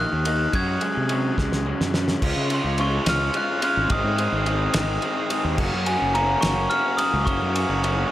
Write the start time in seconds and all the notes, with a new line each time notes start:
Already playing: A#3 F#6
0.00 D#3 A#3 F#6
0.13 D#2
0.25 D#3 A#3 D#4, ride
0.52 F#2 F#3 G#3 C#4 F#4 G#6, kick, ride
0.81 G#3 C#4, ride
0.97 C3
1.09 F#3 G#3 C#4, ride
1.36 C#2 G#3 C#4, kick, snare
1.52 snare
1.66 F#3 G#3 C#4
1.80 F#2, snare
1.94 G#3 C#4, snare
2.08 snare
2.21 C#2 C#3 G#3 C#4 F4, kick, crash
2.37 C#3
2.50 C#3 G#3 C#4 F4 C6, ride
2.54 C6
2.64 C#2
2.78 C#3 G#3 C#4 F4 C#6, ride
3.06 C#2 C#3 G#3 C#4 F4 F6, snare, ride
3.34 C#3 G#3 C#4 F4 F#6, ride
3.62 C#3 G#3 C#4 F4 F6, ride
3.77 G#1
3.90 G#1 G#2 D#3 G#3 C4 D#4 G#4 D#6, kick, ride
4.04 G#2
4.18 G#2 D#3 G#3 C4 D#4 G#4, ride
4.32 G#1
4.46 G#2 D#3 G#3 C4 D#4 G#4, ride
4.74 G#1 G#2 D#3 G#3 C4 D#4 G#4, snare, ride
5.02 G#2 D#3 G#3 C4 D#4 G#4, ride
5.30 G#2 D#3 G#3 C4 D#4 G#4, ride
5.45 D#2
5.58 F#1 F#2 C#3 F#3 A#3 C#4 F#4, kick, crash
5.73 F#2
5.86 F#2 C#3 F#3 A#3 C#4 F#4 G#5, ride
6.02 F#1
6.14 F#2 C#3 F#3 A#3 C#4 F#4 A#5, ride
6.41 F#1 F#2 F#4 C#6, snare, ride
6.45 C#3 F#3 A#3 C#4
6.70 F#2 C#3 F#3 A#3 C#4 F#4 F6, ride
6.97 F#2 C#3 F#3 C#4 F#4 D#6, ride
7.01 A#3
7.13 C#2
7.25 F#1 F#2 C#3 F#3 A#3 F#4 C#6, kick, ride
7.30 C#4
7.42 F#2
7.55 F#2 C#3 F#3 A#3 C#4 F#4, ride
7.69 F#1
7.83 F#2 C#3 F#3 A#3 C#4 F#4, ride